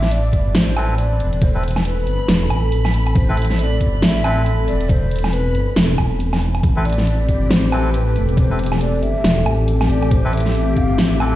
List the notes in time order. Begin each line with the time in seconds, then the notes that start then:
Already playing: A1 A3 C4 A4 E5 B5
0.03 snare
0.11 D5, closed hi-hat
0.33 G1, kick, closed hi-hat
0.55 A1 C5, snare, closed hi-hat
0.77 C4 E4 A4 B4, closed hi-hat, low woodblock
0.98 D5, closed hi-hat
1.20 E1, closed hi-hat
1.33 closed hi-hat
1.42 C5, kick, closed hi-hat
1.55 C4 E4 A4 B4
1.63 closed hi-hat
1.68 closed hi-hat
1.71 closed hi-hat
1.76 snare, low woodblock
1.85 B4, closed hi-hat
2.07 G1, closed hi-hat
2.28 E1, snare, closed hi-hat
2.50 A1, closed hi-hat, low woodblock
2.72 closed hi-hat
2.85 snare, low woodblock
2.94 A1, closed hi-hat
3.07 closed hi-hat, low woodblock
3.15 A1 C5, kick, closed hi-hat
3.28 C4 E4 A4 B4
3.37 closed hi-hat
3.42 closed hi-hat
3.45 closed hi-hat
3.50 snare
3.59 E5, closed hi-hat
3.63 D5
3.81 G1, kick, closed hi-hat
4.02 A1 E5, snare, closed hi-hat
4.24 C4 E4 A4 B4, closed hi-hat, low woodblock
4.46 closed hi-hat
4.68 E1 D5, closed hi-hat
4.81 closed hi-hat
4.89 C5, kick, closed hi-hat
5.11 closed hi-hat
5.16 closed hi-hat
5.18 closed hi-hat
5.24 snare, low woodblock
5.33 B4, closed hi-hat
5.55 G1, closed hi-hat
5.76 E1, snare, closed hi-hat
5.98 E1, kick, closed hi-hat, low woodblock
6.20 closed hi-hat
6.33 snare, low woodblock
6.42 closed hi-hat
6.55 closed hi-hat, low woodblock
6.63 A1 G4 A4, kick, closed hi-hat
6.76 C4 E4 A4 B4
6.85 D5, closed hi-hat
6.90 closed hi-hat
6.93 closed hi-hat
6.98 snare
7.07 closed hi-hat
7.29 G1, kick, closed hi-hat
7.50 A1 C5, snare, closed hi-hat
7.72 C4 E4 A4 B4, closed hi-hat, low woodblock
7.94 B4, closed hi-hat
8.16 E1, closed hi-hat
8.29 closed hi-hat
8.37 D5, kick, closed hi-hat
8.41 C5
8.50 C4 E4 A4 B4
8.59 closed hi-hat
8.63 closed hi-hat
8.66 closed hi-hat
8.72 snare, low woodblock
8.81 D5, closed hi-hat
9.03 G1 E5, closed hi-hat
9.24 E1, snare, closed hi-hat
9.46 A1, closed hi-hat, low woodblock
9.68 closed hi-hat
9.81 snare, low woodblock
9.90 A1 D5, closed hi-hat
10.03 closed hi-hat, low woodblock
10.11 A1 C5, kick, closed hi-hat
10.24 C4 E4 A4 B4
10.33 E5, closed hi-hat
10.37 closed hi-hat
10.40 closed hi-hat
10.46 snare
10.55 closed hi-hat
10.77 G1 F5, kick, closed hi-hat
10.98 A1 F5, snare, closed hi-hat
11.03 E5
11.20 C4 E4 A4 B4, closed hi-hat, low woodblock